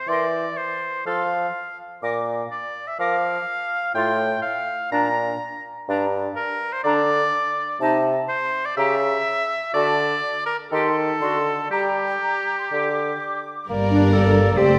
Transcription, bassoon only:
0, 0, Header, 1, 2, 480
1, 0, Start_track
1, 0, Key_signature, -1, "major"
1, 0, Tempo, 483092
1, 88, Time_signature, 4, 2, 24, 8
1, 5847, Key_signature, -2, "minor"
1, 10648, Tempo, 496689
1, 13528, Tempo, 436047
1, 14729, End_track
2, 0, Start_track
2, 0, Title_t, "Bassoon"
2, 0, Program_c, 0, 70
2, 81, Note_on_c, 0, 52, 40
2, 485, Note_off_c, 0, 52, 0
2, 1057, Note_on_c, 0, 53, 37
2, 1462, Note_off_c, 0, 53, 0
2, 2015, Note_on_c, 0, 46, 44
2, 2417, Note_off_c, 0, 46, 0
2, 2974, Note_on_c, 0, 53, 46
2, 3370, Note_off_c, 0, 53, 0
2, 3923, Note_on_c, 0, 45, 50
2, 4321, Note_off_c, 0, 45, 0
2, 4884, Note_on_c, 0, 46, 47
2, 5290, Note_off_c, 0, 46, 0
2, 5847, Note_on_c, 0, 43, 60
2, 6243, Note_off_c, 0, 43, 0
2, 6802, Note_on_c, 0, 50, 58
2, 7201, Note_off_c, 0, 50, 0
2, 7759, Note_on_c, 0, 48, 64
2, 8161, Note_off_c, 0, 48, 0
2, 8716, Note_on_c, 0, 49, 54
2, 9117, Note_off_c, 0, 49, 0
2, 9687, Note_on_c, 0, 50, 60
2, 10087, Note_off_c, 0, 50, 0
2, 10650, Note_on_c, 0, 51, 53
2, 11044, Note_off_c, 0, 51, 0
2, 11126, Note_on_c, 0, 50, 44
2, 11525, Note_off_c, 0, 50, 0
2, 11611, Note_on_c, 0, 55, 45
2, 12014, Note_off_c, 0, 55, 0
2, 12587, Note_on_c, 0, 50, 43
2, 12983, Note_off_c, 0, 50, 0
2, 13529, Note_on_c, 0, 58, 50
2, 14497, Note_on_c, 0, 60, 54
2, 14514, Note_off_c, 0, 58, 0
2, 14729, Note_off_c, 0, 60, 0
2, 14729, End_track
0, 0, End_of_file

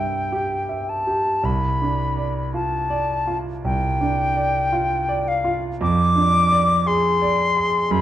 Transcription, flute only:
0, 0, Header, 1, 2, 480
1, 0, Start_track
1, 0, Tempo, 1100917
1, 629, Time_signature, 4, 2, 24, 8
1, 2063, Tempo, 1060071
1, 3550, End_track
2, 0, Start_track
2, 0, Title_t, "Flute"
2, 0, Program_c, 0, 73
2, 0, Note_on_c, 0, 79, 67
2, 389, Note_on_c, 0, 81, 60
2, 396, Note_off_c, 0, 79, 0
2, 633, Note_on_c, 0, 83, 66
2, 639, Note_off_c, 0, 81, 0
2, 1106, Note_off_c, 0, 83, 0
2, 1108, Note_on_c, 0, 81, 70
2, 1472, Note_off_c, 0, 81, 0
2, 1590, Note_on_c, 0, 79, 82
2, 2311, Note_on_c, 0, 77, 67
2, 2318, Note_off_c, 0, 79, 0
2, 2468, Note_off_c, 0, 77, 0
2, 2556, Note_on_c, 0, 86, 92
2, 3032, Note_on_c, 0, 84, 81
2, 3039, Note_off_c, 0, 86, 0
2, 3504, Note_on_c, 0, 83, 92
2, 3511, Note_off_c, 0, 84, 0
2, 3550, Note_off_c, 0, 83, 0
2, 3550, End_track
0, 0, End_of_file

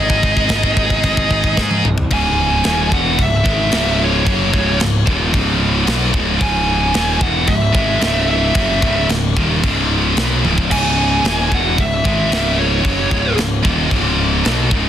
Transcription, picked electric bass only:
0, 0, Header, 1, 2, 480
1, 0, Start_track
1, 0, Key_signature, 4, "minor"
1, 0, Tempo, 536193
1, 1898, Time_signature, 4, 2, 24, 8
1, 13329, End_track
2, 0, Start_track
2, 0, Title_t, "Picked electric bass"
2, 0, Program_c, 0, 34
2, 0, Note_on_c, 0, 32, 94
2, 189, Note_off_c, 0, 32, 0
2, 210, Note_on_c, 0, 32, 88
2, 429, Note_off_c, 0, 32, 0
2, 444, Note_on_c, 0, 32, 97
2, 666, Note_off_c, 0, 32, 0
2, 693, Note_on_c, 0, 32, 96
2, 911, Note_off_c, 0, 32, 0
2, 926, Note_on_c, 0, 32, 88
2, 1147, Note_off_c, 0, 32, 0
2, 1165, Note_on_c, 0, 32, 81
2, 1387, Note_off_c, 0, 32, 0
2, 1413, Note_on_c, 0, 44, 87
2, 1632, Note_off_c, 0, 44, 0
2, 1657, Note_on_c, 0, 36, 95
2, 1874, Note_off_c, 0, 36, 0
2, 1885, Note_on_c, 0, 25, 94
2, 2338, Note_off_c, 0, 25, 0
2, 2378, Note_on_c, 0, 27, 98
2, 2602, Note_off_c, 0, 27, 0
2, 2614, Note_on_c, 0, 28, 100
2, 2840, Note_off_c, 0, 28, 0
2, 2852, Note_on_c, 0, 25, 86
2, 3079, Note_off_c, 0, 25, 0
2, 3099, Note_on_c, 0, 32, 97
2, 3323, Note_off_c, 0, 32, 0
2, 3335, Note_on_c, 0, 25, 95
2, 3784, Note_off_c, 0, 25, 0
2, 3813, Note_on_c, 0, 30, 98
2, 4040, Note_off_c, 0, 30, 0
2, 4059, Note_on_c, 0, 25, 96
2, 4284, Note_off_c, 0, 25, 0
2, 4316, Note_on_c, 0, 25, 80
2, 4530, Note_off_c, 0, 25, 0
2, 4535, Note_on_c, 0, 27, 102
2, 4762, Note_off_c, 0, 27, 0
2, 4778, Note_on_c, 0, 25, 98
2, 5226, Note_off_c, 0, 25, 0
2, 5259, Note_on_c, 0, 35, 95
2, 5484, Note_off_c, 0, 35, 0
2, 5501, Note_on_c, 0, 25, 103
2, 5725, Note_off_c, 0, 25, 0
2, 5734, Note_on_c, 0, 25, 99
2, 6184, Note_off_c, 0, 25, 0
2, 6218, Note_on_c, 0, 27, 93
2, 6443, Note_off_c, 0, 27, 0
2, 6458, Note_on_c, 0, 28, 105
2, 6683, Note_off_c, 0, 28, 0
2, 6692, Note_on_c, 0, 25, 87
2, 6920, Note_off_c, 0, 25, 0
2, 6936, Note_on_c, 0, 32, 104
2, 7151, Note_off_c, 0, 32, 0
2, 7156, Note_on_c, 0, 25, 88
2, 7615, Note_off_c, 0, 25, 0
2, 7653, Note_on_c, 0, 30, 96
2, 7881, Note_off_c, 0, 30, 0
2, 7903, Note_on_c, 0, 25, 91
2, 8126, Note_off_c, 0, 25, 0
2, 8135, Note_on_c, 0, 25, 86
2, 8361, Note_off_c, 0, 25, 0
2, 8384, Note_on_c, 0, 27, 103
2, 8606, Note_off_c, 0, 27, 0
2, 8624, Note_on_c, 0, 25, 98
2, 9069, Note_off_c, 0, 25, 0
2, 9102, Note_on_c, 0, 35, 93
2, 9325, Note_off_c, 0, 35, 0
2, 9346, Note_on_c, 0, 25, 101
2, 9567, Note_off_c, 0, 25, 0
2, 9590, Note_on_c, 0, 25, 97
2, 10033, Note_off_c, 0, 25, 0
2, 10062, Note_on_c, 0, 27, 92
2, 10285, Note_off_c, 0, 27, 0
2, 10311, Note_on_c, 0, 28, 106
2, 10530, Note_off_c, 0, 28, 0
2, 10544, Note_on_c, 0, 25, 82
2, 10766, Note_off_c, 0, 25, 0
2, 10786, Note_on_c, 0, 32, 96
2, 11007, Note_off_c, 0, 32, 0
2, 11023, Note_on_c, 0, 25, 85
2, 11469, Note_off_c, 0, 25, 0
2, 11502, Note_on_c, 0, 30, 92
2, 11725, Note_off_c, 0, 30, 0
2, 11741, Note_on_c, 0, 25, 90
2, 11964, Note_off_c, 0, 25, 0
2, 11979, Note_on_c, 0, 25, 83
2, 12203, Note_off_c, 0, 25, 0
2, 12219, Note_on_c, 0, 27, 98
2, 12443, Note_off_c, 0, 27, 0
2, 12453, Note_on_c, 0, 25, 92
2, 12903, Note_off_c, 0, 25, 0
2, 12943, Note_on_c, 0, 35, 93
2, 13164, Note_off_c, 0, 35, 0
2, 13168, Note_on_c, 0, 25, 103
2, 13329, Note_off_c, 0, 25, 0
2, 13329, End_track
0, 0, End_of_file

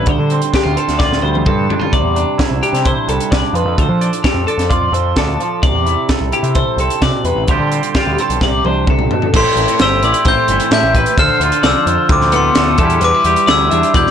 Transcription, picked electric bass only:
0, 0, Header, 1, 2, 480
1, 0, Start_track
1, 0, Key_signature, 0, "major"
1, 0, Tempo, 462250
1, 86, Time_signature, 4, 2, 24, 8
1, 14651, End_track
2, 0, Start_track
2, 0, Title_t, "Picked electric bass"
2, 0, Program_c, 0, 34
2, 66, Note_on_c, 0, 38, 72
2, 179, Note_off_c, 0, 38, 0
2, 201, Note_on_c, 0, 50, 76
2, 412, Note_off_c, 0, 50, 0
2, 680, Note_on_c, 0, 38, 84
2, 787, Note_off_c, 0, 38, 0
2, 918, Note_on_c, 0, 38, 73
2, 1234, Note_off_c, 0, 38, 0
2, 1271, Note_on_c, 0, 38, 75
2, 1486, Note_off_c, 0, 38, 0
2, 1517, Note_on_c, 0, 43, 80
2, 1730, Note_off_c, 0, 43, 0
2, 2002, Note_on_c, 0, 36, 87
2, 2107, Note_off_c, 0, 36, 0
2, 2107, Note_on_c, 0, 40, 83
2, 2324, Note_off_c, 0, 40, 0
2, 2599, Note_on_c, 0, 36, 73
2, 2707, Note_off_c, 0, 36, 0
2, 2834, Note_on_c, 0, 48, 67
2, 3048, Note_off_c, 0, 48, 0
2, 3200, Note_on_c, 0, 36, 65
2, 3308, Note_off_c, 0, 36, 0
2, 3447, Note_on_c, 0, 36, 86
2, 3551, Note_off_c, 0, 36, 0
2, 3665, Note_on_c, 0, 41, 85
2, 3779, Note_off_c, 0, 41, 0
2, 3792, Note_on_c, 0, 41, 78
2, 3903, Note_off_c, 0, 41, 0
2, 3925, Note_on_c, 0, 38, 76
2, 4028, Note_off_c, 0, 38, 0
2, 4034, Note_on_c, 0, 53, 79
2, 4249, Note_off_c, 0, 53, 0
2, 4506, Note_on_c, 0, 41, 83
2, 4620, Note_off_c, 0, 41, 0
2, 4751, Note_on_c, 0, 41, 76
2, 5072, Note_off_c, 0, 41, 0
2, 5110, Note_on_c, 0, 41, 80
2, 5327, Note_off_c, 0, 41, 0
2, 5357, Note_on_c, 0, 38, 84
2, 5571, Note_off_c, 0, 38, 0
2, 5841, Note_on_c, 0, 36, 83
2, 5966, Note_off_c, 0, 36, 0
2, 5966, Note_on_c, 0, 40, 84
2, 6177, Note_off_c, 0, 40, 0
2, 6444, Note_on_c, 0, 36, 77
2, 6552, Note_off_c, 0, 36, 0
2, 6675, Note_on_c, 0, 48, 77
2, 6891, Note_off_c, 0, 48, 0
2, 7030, Note_on_c, 0, 36, 80
2, 7144, Note_off_c, 0, 36, 0
2, 7286, Note_on_c, 0, 48, 87
2, 7394, Note_off_c, 0, 48, 0
2, 7519, Note_on_c, 0, 40, 81
2, 7626, Note_off_c, 0, 40, 0
2, 7632, Note_on_c, 0, 33, 72
2, 7746, Note_off_c, 0, 33, 0
2, 7768, Note_on_c, 0, 38, 79
2, 7875, Note_off_c, 0, 38, 0
2, 7887, Note_on_c, 0, 50, 81
2, 8098, Note_off_c, 0, 50, 0
2, 8371, Note_on_c, 0, 38, 86
2, 8477, Note_off_c, 0, 38, 0
2, 8614, Note_on_c, 0, 35, 74
2, 8718, Note_off_c, 0, 35, 0
2, 8735, Note_on_c, 0, 36, 96
2, 8943, Note_off_c, 0, 36, 0
2, 8975, Note_on_c, 0, 36, 80
2, 9183, Note_off_c, 0, 36, 0
2, 9211, Note_on_c, 0, 36, 70
2, 9421, Note_off_c, 0, 36, 0
2, 9696, Note_on_c, 0, 33, 84
2, 9799, Note_off_c, 0, 33, 0
2, 9923, Note_on_c, 0, 33, 81
2, 10031, Note_off_c, 0, 33, 0
2, 10177, Note_on_c, 0, 31, 91
2, 10383, Note_off_c, 0, 31, 0
2, 10410, Note_on_c, 0, 33, 85
2, 10515, Note_off_c, 0, 33, 0
2, 10644, Note_on_c, 0, 33, 95
2, 10752, Note_off_c, 0, 33, 0
2, 10886, Note_on_c, 0, 31, 82
2, 10993, Note_off_c, 0, 31, 0
2, 11121, Note_on_c, 0, 45, 76
2, 11230, Note_off_c, 0, 45, 0
2, 11243, Note_on_c, 0, 33, 82
2, 11455, Note_off_c, 0, 33, 0
2, 11604, Note_on_c, 0, 38, 89
2, 11711, Note_off_c, 0, 38, 0
2, 11837, Note_on_c, 0, 38, 82
2, 11947, Note_off_c, 0, 38, 0
2, 12081, Note_on_c, 0, 36, 87
2, 12188, Note_off_c, 0, 36, 0
2, 12318, Note_on_c, 0, 41, 84
2, 12427, Note_off_c, 0, 41, 0
2, 12555, Note_on_c, 0, 38, 101
2, 12977, Note_off_c, 0, 38, 0
2, 13049, Note_on_c, 0, 38, 86
2, 13256, Note_off_c, 0, 38, 0
2, 13275, Note_on_c, 0, 40, 87
2, 13487, Note_off_c, 0, 40, 0
2, 13511, Note_on_c, 0, 40, 93
2, 13621, Note_off_c, 0, 40, 0
2, 13753, Note_on_c, 0, 40, 81
2, 13862, Note_off_c, 0, 40, 0
2, 13997, Note_on_c, 0, 38, 92
2, 14208, Note_off_c, 0, 38, 0
2, 14245, Note_on_c, 0, 40, 80
2, 14348, Note_off_c, 0, 40, 0
2, 14481, Note_on_c, 0, 40, 93
2, 14585, Note_off_c, 0, 40, 0
2, 14651, End_track
0, 0, End_of_file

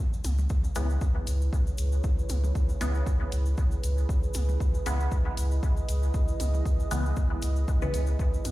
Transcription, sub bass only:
0, 0, Header, 1, 2, 480
1, 0, Start_track
1, 0, Key_signature, 4, "minor"
1, 0, Tempo, 512821
1, 1909, Time_signature, 4, 2, 24, 8
1, 7968, End_track
2, 0, Start_track
2, 0, Title_t, "Sub bass"
2, 0, Program_c, 0, 38
2, 230, Note_on_c, 0, 37, 94
2, 427, Note_off_c, 0, 37, 0
2, 709, Note_on_c, 0, 37, 88
2, 906, Note_off_c, 0, 37, 0
2, 1190, Note_on_c, 0, 37, 85
2, 1386, Note_off_c, 0, 37, 0
2, 1669, Note_on_c, 0, 37, 82
2, 1866, Note_off_c, 0, 37, 0
2, 2150, Note_on_c, 0, 37, 93
2, 2347, Note_off_c, 0, 37, 0
2, 2629, Note_on_c, 0, 37, 89
2, 2826, Note_off_c, 0, 37, 0
2, 3109, Note_on_c, 0, 37, 87
2, 3306, Note_off_c, 0, 37, 0
2, 3589, Note_on_c, 0, 37, 85
2, 3786, Note_off_c, 0, 37, 0
2, 4070, Note_on_c, 0, 37, 91
2, 4267, Note_off_c, 0, 37, 0
2, 4550, Note_on_c, 0, 37, 89
2, 4747, Note_off_c, 0, 37, 0
2, 5030, Note_on_c, 0, 37, 86
2, 5227, Note_off_c, 0, 37, 0
2, 5509, Note_on_c, 0, 37, 84
2, 5707, Note_off_c, 0, 37, 0
2, 5989, Note_on_c, 0, 37, 92
2, 6186, Note_off_c, 0, 37, 0
2, 6469, Note_on_c, 0, 37, 89
2, 6666, Note_off_c, 0, 37, 0
2, 6950, Note_on_c, 0, 37, 81
2, 7147, Note_off_c, 0, 37, 0
2, 7429, Note_on_c, 0, 37, 82
2, 7626, Note_off_c, 0, 37, 0
2, 7909, Note_on_c, 0, 42, 92
2, 7968, Note_off_c, 0, 42, 0
2, 7968, End_track
0, 0, End_of_file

